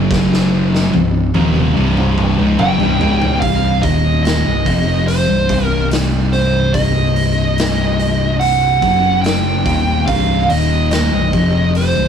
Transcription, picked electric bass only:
0.00 0.89 F#1 loud
0.94 1.32 C1 medium
1.35 1.74 D#1 loud
1.77 2.35 C1 loud
2.39 2.58 C#1 loud
2.60 2.79 F#1 loud
2.81 3.00 C1 loud
3.01 3.39 C#1 loud
3.42 3.81 C1 loud
3.83 4.42 D#1 medium
4.46 4.65 C1 medium
4.67 5.25 F1 medium
5.28 5.48 C1 medium
5.50 8.79 C1 medium
8.83 9.62 F#1 medium
9.66 10.05 D#1 medium
10.08 10.47 C1 loud
10.50 11.09 D#1 loud
11.13 11.32 C1 medium
11.33 11.92 F1 loud
11.97 12.08 C1 medium

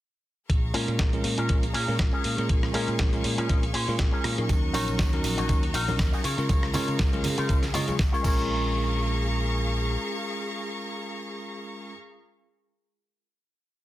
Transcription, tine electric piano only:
0.74 1.10 G#3 medium
0.74 1.10 C#4 medium
0.74 1.10 F4 medium
0.74 1.10 A#4 medium
1.13 1.47 G#3 medium
1.13 1.47 C#4 medium
1.13 1.47 F4 medium
1.13 1.47 A#4 medium
1.49 1.63 G#3 medium
1.49 1.63 C#4 medium
1.49 1.63 F4 medium
1.49 1.64 A#4 medium
1.88 2.35 G#3 medium
1.88 2.35 C#4 medium
1.88 2.35 F4 medium
1.88 2.35 A#4 medium
2.38 2.71 G#3 medium
2.38 2.72 C#4 medium
2.38 2.72 F4 medium
2.38 2.72 A#4 medium
2.74 3.10 G#3 medium
2.74 3.10 C#4 medium
2.74 3.10 F4 medium
2.74 3.10 A#4 loud
3.13 3.46 G#3 medium
3.13 3.47 C#4 medium
3.13 3.47 F4 medium
3.13 3.47 A#4 medium
3.49 3.63 G#3 medium
3.49 3.63 C#4 medium
3.49 3.63 F4 medium
3.49 3.64 A#4 medium
3.88 4.35 G#3 medium
3.88 4.35 C#4 medium
3.88 4.35 F4 medium
3.88 4.35 A#4 medium
4.38 4.72 F#3 medium
4.38 4.72 C#4 medium
4.38 4.72 D#4 medium
4.38 4.72 A#4 medium
4.74 5.09 F#3 medium
4.74 5.10 C#4 medium
4.74 5.10 D#4 medium
4.74 5.10 A#4 loud
5.13 5.46 F#3 medium
5.13 5.47 C#4 medium
5.13 5.47 D#4 medium
5.13 5.47 A#4 medium
5.49 5.63 F#3 medium
5.49 5.63 C#4 medium
5.49 5.63 D#4 medium
5.49 5.64 A#4 medium
5.88 6.23 F#3 medium
5.88 6.23 C#4 medium
5.88 6.23 D#4 medium
5.88 6.23 A#4 medium
6.38 6.72 G#3 medium
6.38 6.72 C#4 medium
6.38 6.72 F4 medium
6.38 6.72 A#4 medium
6.74 7.10 G#3 medium
6.74 7.10 C#4 medium
6.74 7.10 F4 medium
6.74 7.10 A#4 loud
7.13 7.46 G#3 medium
7.13 7.47 C#4 medium
7.13 7.47 F4 medium
7.13 7.47 A#4 medium
7.49 7.63 G#3 medium
7.49 7.63 C#4 medium
7.49 7.63 F4 medium
7.49 7.64 A#4 medium
7.74 7.85 G#3 medium
7.74 7.85 C#4 medium
7.74 7.85 F4 medium
7.74 7.85 D#5 medium
7.88 7.99 G#3 medium
7.88 7.99 C#4 medium
7.88 7.99 F4 medium
7.88 8.00 G#4 medium
8.13 8.21 G#3 medium
8.13 8.22 C#4 medium
8.13 8.23 F4 medium
8.13 8.25 A#4 medium
8.23 11.92 G#3 medium
8.23 11.93 C#4 medium
8.23 11.94 F4 medium
8.23 11.95 A#4 medium

